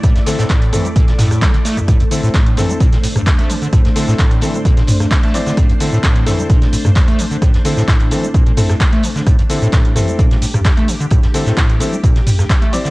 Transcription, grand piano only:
\new Staff \with { instrumentName = "Grand piano" } { \time 4/4 \key a \phrygian \tempo 4 = 130 r8 <c' e' a'>8 r8 <c' e' a'>16 r2 r16 | r8 <c' e' a'>8 r8 <c' e' a'>8 r2 | r8 <c' e' a'>8 r8 <c' e' a'>16 r4. r16 <c' e' d''>8 | r8 <c' e' a'>8 r8 <c' e' a'>8 r2 |
r8 <c' e' a'>8 r8 <c' e' a'>16 r8. <c' e' a'>16 r4 r16 | r8 <c' e' a'>8 r8 <c' e' a'>8 r2 | r8 <c' e' a'>8 r8 <c' e' a'>16 r4. r16 <c' e' d''>8 | }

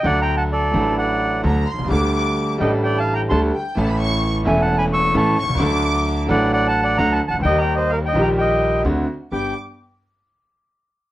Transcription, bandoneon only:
\new Staff \with { instrumentName = "Bandoneon" } { \time 4/4 \key d \phrygian \tempo 4 = 130 \tuplet 3/2 { <d'' fis''>8 <g'' bes''>8 <fis'' a''>8 } <a' d''>4 <d'' fis''>4 r4 | r4. <ees'' g''>8 \tuplet 3/2 { <d'' g''>8 <f'' a''>8 <g'' bes''>8 } <a'' c'''>8 r8 | r4 \tuplet 3/2 { r8. <e'' aes''>8 <fis'' a''>16~ <fis'' a''>16 <aes'' b''>8 <cis''' e'''>8. } <a'' cis'''>8 r8 | r4. <d'' fis''>8 \tuplet 3/2 { <d'' fis''>8 <fis'' a''>8 <d'' fis''>8 <fis'' bes''>8 <fis'' a''>8 <fis'' a''>8 } |
\tuplet 3/2 { <ees'' g''>8 <g'' bes''>8 <c'' ees''>8 <bes' f''>8 <ees'' g''>8 <g'' bes''>8 } <ees'' g''>4 r4 | g''8 r2. r8 | }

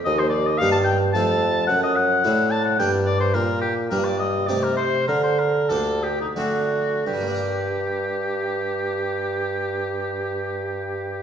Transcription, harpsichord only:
\new Staff \with { instrumentName = "Harpsichord" } { \time 3/4 \key g \minor \tempo 4 = 99 ees,4 <g, bes ees' g'>4 <f, a c' a'>4 | fis,4 <a, c' d' a'>4 <g, bes d' g'>4 | bes,4 <g, bes d' g'>4 <c a ees' g'>4 | d4 <d, bes d' g'>4 <d a c' d'>4 |
<g, g bes d' bes'>2.~ | <g, g bes d' bes'>2. | }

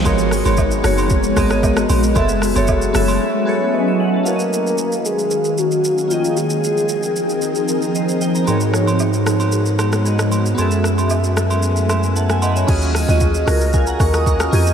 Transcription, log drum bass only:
\new Staff \with { instrumentName = "Log drum bass" } { \clef bass \time 4/4 \key ees \minor \tempo 4 = 114 aes,,8. aes,,8. ges,,4 aes,,4 bes,,8 | ges,,8. ges,,8. ges,,8 r2 | r1 | r1 |
r1 | r1 | ees,8. ees,8. des,4 ees,4 f,8 | }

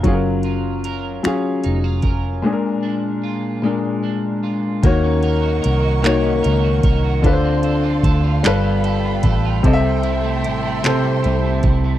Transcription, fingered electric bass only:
\new Staff \with { instrumentName = "Fingered electric bass" } { \clef bass \time 6/8 \key ges \lydian \tempo 4. = 50 ges,,4. r8 f,,4 | r2. | ees,4 c,4 des,8 c,8 | d,4 d,8 g,,4 a,,8 |
c,4 a,,4 c,8 c,8 | }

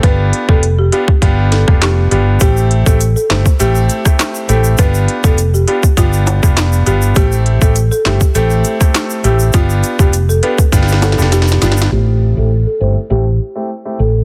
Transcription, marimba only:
\new Staff \with { instrumentName = "Marimba" } { \time 4/4 \key a \minor \tempo 4 = 101 b'16 r8 a'16 r16 g'16 g'16 r8. a'16 r16 g'16 r16 g'16 r16 | g'16 r8 a'16 r16 a'16 r8 g'8. r8. a'16 r16 | b'16 r8 a'16 r16 g'16 g'16 r16 f'8. r8. g'16 r16 | g'16 r8 a'16 r16 a'16 g'16 r16 a'8. r8. g'16 r16 |
f'16 r8 g'16 r16 a'16 b'16 r8. a'16 r16 g'16 r16 f'16 r16 | g'16 r8 a'16 r16 a'16 c''16 r16 g'8. r8. a'16 r16 | }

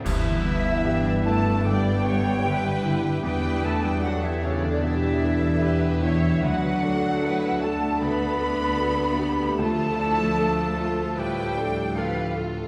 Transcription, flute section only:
\new Staff \with { instrumentName = "Flute section" } { \time 4/4 \key g \major \tempo 4 = 76 e''4. a''8 g''2 | g''8 a''16 g''16 fis''16 e''16 cis''16 d''16 e''4. e''8 | fis''4. a''8 b''2 | a''2 g''4 f''8 r8 | }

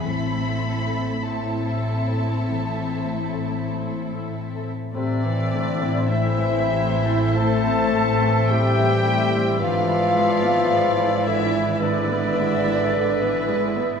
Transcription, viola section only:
\new Staff \with { instrumentName = "Viola section" } { \clef bass \time 4/4 \key a \minor \tempo 4 = 52 << { e'4 e'2. | e'1 | e'1 | } \\ { c'4 c'2~ c'8. r16 | c16 e16 a16 c'16 a16 e16 c16 e16 a16 c'16 a16 e16 c16 e16 a16 c'16 | d16 e16 gis16 b16 gis16 e16 d16 e16 gis16 b16 gis16 e16 d16 e16 gis16 b16 | } >> }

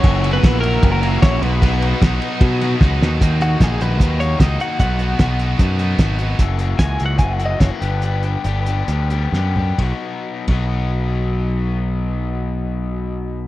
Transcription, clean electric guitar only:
\new Staff \with { instrumentName = "Clean electric guitar" } { \time 4/4 \key b \major \tempo 4 = 150 cis''8. b'8. ais'8. ais'8. cis''8 b'8~ | b'2. r4 | r8 fis'8 gis'8 b'4 cis''8 dis''8 fis''8 | fis''2 r2 |
r4 \tuplet 3/2 { gis''4 fis''8 gis''8 fis''8 dis''8 cis''8 b'4~ } | b'2~ b'8 r4. | r1 | r1 | }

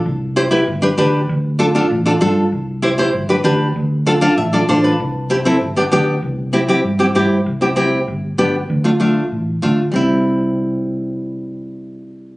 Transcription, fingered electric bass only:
\new Staff \with { instrumentName = "Fingered electric bass" } { \clef bass \time 4/4 \key c \major \tempo 4 = 194 c,2 g,,4 d,4 | d,2 a,,4 g,4 | c,2 g,,4 d,4 | d,2 a,,4 a,,4 |
c,2 g,,4 d,4 | c,2 g,4 g,4 | c,2 g,,4 g,,4 | d,2 a,,4 d,4 |
c,1~ | c,1 | }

